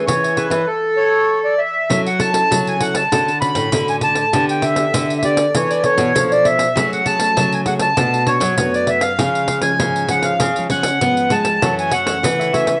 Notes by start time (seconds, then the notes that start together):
Already playing: C#4 E4 G#4 A4 C#5 E5 G#5
0.06 E3 C#5, pandeiro
0.23 C#5 E5 G#5, pandeiro
0.36 C#4 E4 G#4 A4 B4 C#5 E5 G#5, pandeiro
0.50 E3 C#5 E5 G#5, pandeiro
0.67 A4
0.97 C#5
1.44 D5
1.58 E5
1.90 F#3 C#4 E4 A4, pandeiro
2.07 F#5, pandeiro
2.19 C#4 E4 A4 A5, pandeiro
2.34 C#4 E4 A4, pandeiro
2.51 C#3 F#3, pandeiro
2.67 G#5, pandeiro
2.81 C#4 E4 A4 F#5, pandeiro
2.95 A5, pandeiro
3.12 D3 C#4 F#4 A4, pandeiro
3.28 pandeiro
3.41 C#4 F#4 A4 B5, pandeiro
3.55 A2, pandeiro
3.72 A2 D3 C#4 F#4 A4, pandeiro
3.88 G#5, pandeiro
4.01 A5, pandeiro
4.15 pandeiro
4.33 D3 B3 D4 G4, pandeiro
4.49 G5, pandeiro
4.62 E5, pandeiro
4.76 B3 D4 G4, pandeiro
4.94 D3, pandeiro
5.10 pandeiro
5.18 E5
5.23 B3 D4 G4 D5, pandeiro
5.37 pandeiro
5.55 E3 B3 D4 A4 C#5, pandeiro
5.70 D5, pandeiro
5.84 B3 D4 A4 C#5, pandeiro
5.97 B2, pandeiro
6.15 B2 F3 B3 D4 A4, pandeiro
6.31 D5, pandeiro
6.45 E5, pandeiro
6.59 pandeiro
6.75 F#3 A3 C#4 G#4, pandeiro
6.93 F#5, pandeiro
7.05 A3 C#4 G#4 A5, pandeiro
7.19 A3 C#4, pandeiro
7.37 C#3 F#3, pandeiro
7.52 G#5, pandeiro
7.66 A3 C#4 G#4 F#5, pandeiro
7.79 A5, pandeiro
7.97 B2 A3 D4 F#4, pandeiro
8.14 pandeiro
8.27 A3 D4 F#4 C#5, pandeiro
8.40 F#3, pandeiro
8.58 F#2 A3 B3 D4 F#4, pandeiro
8.74 D5, pandeiro
8.87 E5, pandeiro
9.01 F5, pandeiro
9.19 C#3 F3 G#3 C#4, pandeiro
9.35 pandeiro
9.48 F3 G#3 C#4, pandeiro
9.62 F3 G#3 C#4 G#5, pandeiro
9.80 G#2 C#3, pandeiro
9.96 pandeiro
10.08 F3 G#3 C#4 F#5, pandeiro
10.23 F5, pandeiro
10.40 C#3, pandeiro
10.56 F3 G#3 C#4, pandeiro
10.70 F3 G#3 C#4 F#5, pandeiro
10.83 pandeiro
11.01 G#2 F3 G#3 B3 C#4, pandeiro
11.17 pandeiro
11.30 G#3 A5, pandeiro
11.45 pandeiro
11.62 F#2 E3 F#3 A3 C#4 F#4 A4 C#5 E5, pandeiro
11.79 G#5, pandeiro
11.92 F#4 A4 C#5 E5 F#5, pandeiro
12.06 E3 A3 C#4 F#4 A4 C#5 E5, pandeiro
12.23 C#3 E3, pandeiro
12.39 A4 C#5 E5, pandeiro
12.53 E3 A3 C#4 F#4 A4 C#5 E5, pandeiro
12.67 A4 C#5 E5, pandeiro